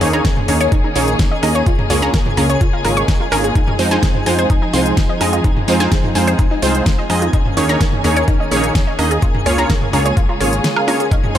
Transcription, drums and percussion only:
0.01 open hi-hat loud
0.13 closed hi-hat medium
0.13 high conga medium
0.25 kick loud
0.25 snare loud
0.25 closed hi-hat medium
0.37 mid tom medium
0.48 open hi-hat loud
0.48 high conga medium
0.61 closed hi-hat medium
0.72 kick loud
0.72 closed hi-hat medium
0.96 open hi-hat loud
1.08 closed hi-hat medium
1.19 kick loud
1.19 snare loud
1.19 closed hi-hat soft
1.43 open hi-hat loud
1.43 high conga medium
1.43 high woodblock medium
1.55 closed hi-hat medium
1.66 kick loud
1.66 closed hi-hat soft
1.79 mid tom medium
1.90 open hi-hat loud
2.02 closed hi-hat medium
2.02 high conga medium
2.14 kick loud
2.14 snare loud
2.14 closed hi-hat medium
2.26 mid tom medium
2.37 open hi-hat loud
2.37 high conga medium
2.50 closed hi-hat medium
2.61 kick loud
2.61 closed hi-hat soft
2.85 open hi-hat loud
2.97 closed hi-hat medium
3.08 kick loud
3.08 snare loud
3.08 closed hi-hat soft
3.32 open hi-hat loud
3.32 high conga medium
3.32 high woodblock medium
3.44 closed hi-hat medium
3.55 kick loud
3.55 closed hi-hat soft
3.68 mid tom medium
3.79 open hi-hat loud
3.91 closed hi-hat medium
3.91 high conga medium
4.03 kick loud
4.03 snare loud
4.03 closed hi-hat medium
4.15 mid tom medium
4.26 open hi-hat loud
4.26 high conga medium
4.39 closed hi-hat medium
4.50 kick loud
4.50 closed hi-hat soft
4.73 open hi-hat loud
4.86 closed hi-hat medium
4.97 kick loud
4.97 snare loud
4.97 closed hi-hat medium
5.21 open hi-hat loud
5.21 high conga medium
5.21 high woodblock medium
5.33 closed hi-hat medium
5.44 kick loud
5.44 closed hi-hat soft
5.57 mid tom medium
5.68 open hi-hat loud
5.80 closed hi-hat medium
5.80 high conga medium
5.92 kick loud
5.92 snare loud
5.92 closed hi-hat medium
6.04 mid tom medium
6.15 open hi-hat loud
6.15 high conga medium
6.27 closed hi-hat medium
6.39 kick loud
6.39 closed hi-hat medium
6.62 open hi-hat loud
6.75 closed hi-hat medium
6.86 kick loud
6.86 snare loud
6.86 closed hi-hat medium
7.10 open hi-hat loud
7.10 high conga medium
7.10 high woodblock medium
7.22 closed hi-hat medium
7.33 kick loud
7.33 closed hi-hat medium
7.46 mid tom medium
7.57 open hi-hat medium
7.69 closed hi-hat medium
7.69 high conga medium
7.81 kick loud
7.81 snare loud
7.81 closed hi-hat medium
7.93 mid tom medium
8.04 open hi-hat loud
8.04 high conga medium
8.16 closed hi-hat medium
8.28 kick loud
8.28 closed hi-hat medium
8.51 open hi-hat loud
8.64 closed hi-hat medium
8.75 kick loud
8.75 snare loud
8.75 closed hi-hat medium
8.99 open hi-hat loud
8.99 high conga medium
8.99 high woodblock medium
9.11 closed hi-hat medium
9.22 kick loud
9.22 closed hi-hat medium
9.35 mid tom medium
9.46 open hi-hat loud
9.58 closed hi-hat medium
9.58 high conga medium
9.70 kick loud
9.70 snare loud
9.70 closed hi-hat medium
9.82 mid tom medium
9.93 open hi-hat loud
9.93 high conga medium
10.06 closed hi-hat medium
10.17 kick loud
10.17 closed hi-hat medium
10.41 open hi-hat loud
10.53 closed hi-hat medium
10.64 snare loud
10.64 closed hi-hat medium
10.76 high woodblock medium
10.88 open hi-hat loud
10.88 high conga medium
10.88 high woodblock medium
11.00 closed hi-hat medium
11.11 kick loud
11.11 closed hi-hat medium
11.24 mid tom medium

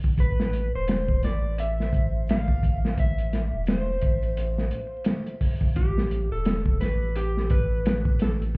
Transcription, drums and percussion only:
0.04 kick medium
0.18 kick loud
0.18 closed hi-hat medium
0.40 snare medium
0.53 closed hi-hat medium
0.88 snare loud
0.88 closed hi-hat medium
0.88 shaker medium
1.08 kick medium
1.23 snare soft
1.23 closed hi-hat medium
1.58 closed hi-hat medium
1.79 snare soft
1.79 triangle medium
1.93 kick medium
1.93 closed hi-hat medium
2.27 snare loud
2.27 closed hi-hat medium
2.27 shaker medium
2.47 kick medium
2.47 triangle medium
2.63 kick medium
2.63 closed hi-hat medium
2.83 snare medium
2.83 triangle medium
2.98 kick loud
2.98 closed hi-hat medium
3.18 closed hi-hat soft
3.33 snare soft
3.33 closed hi-hat medium
3.66 snare loud
3.66 closed hi-hat medium
3.66 shaker medium
4.01 kick medium
4.01 closed hi-hat medium
4.22 closed hi-hat soft
4.22 triangle medium
4.37 closed hi-hat medium
4.58 snare soft
4.71 closed hi-hat medium
5.05 snare medium
5.05 closed hi-hat medium
5.05 triangle medium
5.05 shaker medium
5.27 closed hi-hat soft
5.41 kick medium
5.41 open hi-hat medium
5.61 kick medium
5.76 kick loud
5.76 closed hi-hat medium
5.98 snare medium
6.11 closed hi-hat medium
6.45 snare loud
6.45 closed hi-hat medium
6.45 shaker medium
6.66 kick loud
6.81 snare soft
6.81 closed hi-hat medium
7.16 closed hi-hat medium
7.37 snare soft
7.37 triangle medium
7.50 kick medium
7.50 closed hi-hat medium
7.86 snare loud
7.86 closed hi-hat medium
7.86 shaker medium
8.05 kick medium
8.05 triangle medium
8.19 snare medium
8.19 closed hi-hat medium
8.41 closed hi-hat soft
8.41 triangle medium

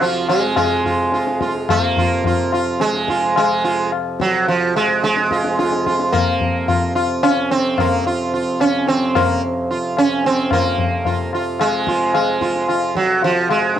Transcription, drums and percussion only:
0.00 tabla tin medium
0.29 tabla na medium
0.56 tabla na medium
0.56 tabla ge medium
0.85 tabla ge medium
1.12 tabla te medium
1.27 tabla te medium
1.41 tabla ke medium
1.55 tabla te medium
1.69 tabla na loud
1.69 tabla ge medium
1.97 tabla ge medium
2.24 tabla tin medium
2.24 tabla ge medium
2.52 tabla na medium
2.80 tabla te medium
2.94 tabla te medium
3.08 tabla ke medium
3.22 tabla te medium
3.36 tabla na medium
3.64 tabla te medium
3.92 tabla na medium
4.20 tabla ke medium
4.47 tabla tin medium
4.76 tabla na medium
5.03 tabla te medium
5.17 tabla te medium
5.31 tabla ke medium
5.44 tabla te medium
5.59 tabla te medium
5.72 tabla te medium
5.86 tabla ke medium
6.00 tabla te medium
6.13 tabla na loud
6.13 tabla ge medium
6.40 tabla ge medium
6.68 tabla tin medium
6.68 tabla ge medium
6.96 tabla na medium
7.23 tabla na medium
7.51 tabla te medium
7.78 tabla na loud
7.78 tabla ge medium
8.60 tabla na medium
8.87 tabla te medium
9.15 tabla na medium
9.15 tabla ge medium
9.97 tabla na medium
10.24 tabla te medium
10.51 tabla na medium
10.51 tabla ge medium
10.78 tabla ge medium
11.05 tabla tin medium
11.05 tabla ge medium
11.33 tabla na medium
11.60 tabla na medium
11.87 tabla ke medium
12.14 tabla na medium
12.41 tabla ke medium
12.55 tabla te medium
12.68 tabla na medium
12.95 tabla ke medium
13.22 tabla tin medium
13.49 tabla na medium
13.76 tabla te medium

